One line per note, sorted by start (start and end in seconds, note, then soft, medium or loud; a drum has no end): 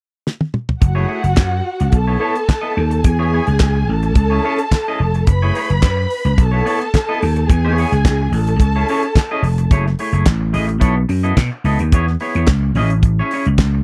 0.27 snare medium
0.41 high tom medium
0.54 mid tom medium
0.69 floor tom medium
0.81 1.04 F#1 loud
0.81 1.92 F#4 medium
0.81 1.92 F#5 medium
0.81 muted clean electric guitar stroke soft
0.81 kick loud
0.81 closed hi-hat medium
0.95 1.06 A3 medium
0.95 1.06 E4 medium
0.95 1.07 G#4 medium
0.95 1.08 C#5 medium
1.08 1.22 A3 medium
1.08 1.22 E4 medium
1.08 1.23 G#4 medium
1.08 1.22 C#5 medium
1.23 1.35 F#1 medium
1.23 muted clean electric guitar stroke soft
1.23 closed hi-hat soft
1.36 1.60 F#2 medium
1.36 muted clean electric guitar stroke soft
1.36 kick loud
1.36 snare loud
1.36 clap medium
1.36 closed hi-hat medium
1.51 muted clean electric guitar stroke soft
1.80 1.91 C#2 medium
1.80 muted clean electric guitar stroke soft
1.80 closed hi-hat soft
1.92 2.15 B1 loud
1.92 3.03 A4 medium
1.92 3.03 A5 medium
1.92 muted clean electric guitar stroke soft
1.92 kick loud
1.92 closed hi-hat medium
2.07 2.19 B3 soft
2.07 2.19 E4 soft
2.07 2.19 A4 soft
2.07 2.20 C#5 medium
2.20 2.38 B3 medium
2.20 2.34 E4 medium
2.20 2.34 A4 medium
2.20 2.34 C#5 medium
2.35 muted clean electric guitar stroke soft
2.35 closed hi-hat soft
2.48 muted clean electric guitar stroke soft
2.48 kick loud
2.48 snare loud
2.48 clap medium
2.48 closed hi-hat medium
2.61 2.74 B3 medium
2.61 2.75 E4 soft
2.61 2.75 A4 medium
2.61 2.76 D#5 medium
2.75 2.99 D#2 medium
2.75 muted clean electric guitar stroke soft
2.90 muted clean electric guitar stroke soft
2.90 closed hi-hat soft
3.04 3.39 E2 loud
3.04 3.86 G#4 medium
3.04 3.86 G#5 medium
3.04 muted clean electric guitar stroke soft
3.04 kick loud
3.04 closed hi-hat medium
3.19 3.32 B3 medium
3.19 3.32 E4 medium
3.19 3.32 G#4 medium
3.19 3.33 C#5 medium
3.33 3.46 B3 medium
3.33 3.47 E4 medium
3.33 3.47 G#4 medium
3.33 3.46 C#5 medium
3.47 3.58 C#2 medium
3.47 muted clean electric guitar stroke soft
3.47 closed hi-hat soft
3.59 3.83 C#2 medium
3.59 muted clean electric guitar stroke soft
3.59 kick loud
3.59 snare loud
3.59 clap medium
3.59 closed hi-hat medium
3.75 muted clean electric guitar stroke soft
3.89 4.11 A1 medium
3.89 5.24 A4 medium
3.89 5.24 A5 medium
4.03 muted clean electric guitar stroke soft
4.03 closed hi-hat soft
4.15 4.38 C#2 medium
4.15 muted clean electric guitar stroke soft
4.15 kick loud
4.15 closed hi-hat medium
4.30 4.43 C#4 medium
4.30 4.43 E4 medium
4.30 4.43 G#4 medium
4.30 4.42 C#5 medium
4.44 4.61 C#4 medium
4.44 4.59 E4 medium
4.44 4.59 G#4 medium
4.44 4.58 C#5 medium
4.58 muted clean electric guitar stroke soft
4.58 closed hi-hat soft
4.71 muted clean electric guitar stroke soft
4.71 kick medium
4.71 snare medium
4.71 clap medium
4.71 closed hi-hat medium
4.88 5.00 C#4 medium
4.88 5.00 E4 medium
4.88 5.00 G#4 medium
4.88 5.02 D#5 medium
5.00 5.22 F1 medium
5.00 muted clean electric guitar stroke soft
5.14 muted clean electric guitar stroke soft
5.14 closed hi-hat soft
5.27 5.50 F#1 loud
5.27 6.37 B4 medium
5.27 6.37 B5 medium
5.27 muted clean electric guitar stroke soft
5.27 kick loud
5.27 closed hi-hat medium
5.42 5.55 A3 medium
5.42 5.55 E4 medium
5.42 5.55 G#4 medium
5.42 5.56 C#5 medium
5.55 5.69 A3 medium
5.55 5.69 E4 medium
5.55 5.69 G#4 medium
5.55 5.69 C#5 medium
5.55 open hi-hat medium
5.70 5.80 F#1 medium
5.70 muted clean electric guitar stroke soft
5.70 closed hi-hat soft
5.82 6.05 F#2 loud
5.82 muted clean electric guitar stroke soft
5.82 kick loud
5.82 snare loud
5.82 clap medium
5.82 closed hi-hat medium
5.97 muted clean electric guitar stroke soft
6.10 open hi-hat medium
6.25 6.35 C#2 medium
6.25 muted clean electric guitar stroke soft
6.25 closed hi-hat soft
6.38 6.60 B1 loud
6.38 7.47 A4 medium
6.38 7.47 A5 medium
6.38 muted clean electric guitar stroke soft
6.38 kick loud
6.38 closed hi-hat medium
6.51 6.64 B3 soft
6.51 6.65 E4 medium
6.51 6.64 A4 medium
6.51 6.64 C#5 medium
6.65 6.83 B3 medium
6.65 6.79 E4 medium
6.65 6.79 A4 medium
6.65 6.79 C#5 medium
6.65 open hi-hat medium
6.80 muted clean electric guitar stroke medium
6.80 closed hi-hat soft
6.94 muted clean electric guitar stroke soft
6.94 kick medium
6.94 snare loud
6.94 clap medium
6.94 closed hi-hat medium
7.09 7.20 B3 medium
7.09 7.20 E4 medium
7.09 7.20 A4 medium
7.09 7.22 D#5 medium
7.21 7.44 D#2 medium
7.21 muted clean electric guitar stroke soft
7.21 open hi-hat medium
7.36 muted clean electric guitar stroke soft
7.36 closed hi-hat soft
7.49 7.84 E2 loud
7.49 8.31 G#4 medium
7.49 8.31 G#5 medium
7.49 muted clean electric guitar stroke soft
7.49 kick loud
7.49 closed hi-hat medium
7.65 7.77 B3 medium
7.65 7.78 E4 medium
7.65 7.78 G#4 medium
7.65 7.78 C#5 medium
7.78 7.91 B3 medium
7.78 7.91 E4 medium
7.78 7.91 G#4 medium
7.78 7.92 C#5 medium
7.78 open hi-hat medium
7.92 8.02 C#2 medium
7.92 muted clean electric guitar stroke soft
7.92 closed hi-hat soft
8.05 8.27 C#2 medium
8.05 muted clean electric guitar stroke soft
8.05 kick loud
8.05 snare loud
8.05 clap medium
8.05 closed hi-hat medium
8.22 muted clean electric guitar stroke soft
8.32 8.54 A1 medium
8.32 9.69 A4 medium
8.32 9.69 A5 medium
8.32 open hi-hat medium
8.47 muted clean electric guitar stroke soft
8.47 closed hi-hat soft
8.60 8.82 C#2 medium
8.60 muted clean electric guitar stroke soft
8.60 kick loud
8.60 closed hi-hat medium
8.76 8.88 C#4 soft
8.76 8.87 E4 medium
8.76 8.87 G#4 medium
8.76 8.87 C#5 medium
8.88 9.05 C#4 medium
8.88 9.04 E4 medium
8.88 9.04 G#4 medium
8.88 9.03 C#5 loud
8.88 open hi-hat medium
9.03 muted clean electric guitar stroke medium
9.03 closed hi-hat soft
9.15 muted clean electric guitar stroke soft
9.15 kick loud
9.15 snare medium
9.15 clap medium
9.15 closed hi-hat medium
9.31 9.43 C#4 medium
9.31 9.44 E4 medium
9.31 9.44 G#4 medium
9.31 9.45 D#5 medium
9.42 9.65 F1 medium
9.42 muted clean electric guitar stroke soft
9.42 open hi-hat medium
9.58 muted clean electric guitar stroke soft
9.58 closed hi-hat medium
9.71 9.93 F#1 loud
9.71 9.88 A3 medium
9.71 9.86 E4 medium
9.71 9.86 G#4 medium
9.71 9.85 C#5 medium
9.71 kick loud
9.71 closed hi-hat medium
9.86 muted clean electric guitar stroke medium
9.86 snare soft
9.99 10.12 A3 medium
9.99 10.13 E4 medium
9.99 10.13 G#4 medium
9.99 10.12 C#5 medium
9.99 open hi-hat medium
10.12 10.23 F#1 medium
10.12 10.25 A3 soft
10.12 10.26 E4 medium
10.12 10.26 G#4 medium
10.12 10.25 C#5 medium
10.12 closed hi-hat soft
10.26 10.49 A1 medium
10.26 kick loud
10.26 snare loud
10.26 clap loud
10.26 closed hi-hat medium
10.41 muted clean electric guitar stroke soft
10.53 10.76 A1 medium
10.53 10.70 A3 medium
10.53 10.67 E4 medium
10.53 10.67 G#4 medium
10.53 10.67 D#5 medium
10.53 open hi-hat medium
10.67 muted clean electric guitar stroke soft
10.67 closed hi-hat soft
10.80 11.04 B1 loud
10.80 10.98 B3 medium
10.80 10.96 E4 medium
10.80 10.96 A4 medium
10.80 10.94 C#5 medium
10.80 kick medium
10.80 closed hi-hat medium
10.95 muted clean electric guitar stroke soft
11.09 11.32 F#2 medium
11.09 muted clean electric guitar stroke soft
11.09 open hi-hat medium
11.23 11.36 B3 medium
11.23 11.36 E4 medium
11.23 11.36 A4 medium
11.23 11.36 D#5 medium
11.23 closed hi-hat soft
11.37 11.49 B2 medium
11.37 kick medium
11.37 snare loud
11.37 clap medium
11.37 closed hi-hat medium
11.52 muted clean electric guitar stroke soft
11.64 11.76 C#2 medium
11.64 11.82 B3 medium
11.64 11.80 E4 medium
11.64 11.79 A4 medium
11.64 11.80 D#5 medium
11.64 open hi-hat medium
11.79 11.92 D#2 medium
11.79 muted clean electric guitar stroke soft
11.79 closed hi-hat medium
11.92 12.15 E2 loud
11.92 12.10 B3 medium
11.92 12.07 E4 medium
11.92 12.07 G#4 medium
11.92 12.06 C#5 medium
11.92 kick loud
11.92 closed hi-hat medium
12.07 muted clean electric guitar stroke soft
12.07 snare soft
12.20 12.34 B3 medium
12.20 12.34 E4 medium
12.20 12.35 G#4 medium
12.20 12.35 C#5 medium
12.20 open hi-hat medium
12.35 12.46 E2 medium
12.35 12.48 B3 soft
12.35 12.48 E4 medium
12.35 12.48 G#4 soft
12.35 12.48 C#5 medium
12.35 closed hi-hat soft
12.47 12.70 C#2 medium
12.47 muted clean electric guitar stroke soft
12.47 kick loud
12.47 snare loud
12.47 clap medium
12.47 closed hi-hat medium
12.63 muted clean electric guitar stroke soft
12.75 13.20 A1 medium
12.75 12.93 C#4 medium
12.75 12.91 E4 medium
12.75 12.90 G#4 medium
12.75 12.91 D#5 medium
12.75 open hi-hat medium
12.90 muted clean electric guitar stroke soft
12.90 closed hi-hat soft
13.03 muted clean electric guitar stroke soft
13.03 kick loud
13.03 closed hi-hat medium
13.19 13.32 C#4 medium
13.19 13.32 E4 medium
13.19 13.32 G#4 medium
13.19 13.33 C#5 medium
13.31 13.46 C#4 medium
13.31 13.46 E4 medium
13.31 13.46 G#4 medium
13.31 13.46 C#5 medium
13.31 open hi-hat medium
13.45 13.57 C#2 medium
13.45 muted clean electric guitar stroke soft
13.45 closed hi-hat soft
13.58 13.81 C#2 loud
13.58 kick loud
13.58 snare loud
13.58 clap medium
13.58 closed hi-hat medium
13.75 muted clean electric guitar stroke medium